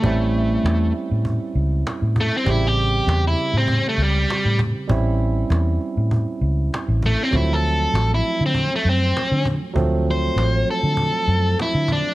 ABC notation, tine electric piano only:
X:1
M:4/4
L:1/8
Q:"Swing 16ths" 1/4=99
K:D
V:1 name="Tine electric piano"
[G,^B,CE]8 | [C,G,^B,G]8 | [G,^B,CE]8 | [^E,F,A,=C]8 |
[^E,F,A,=C]8 |]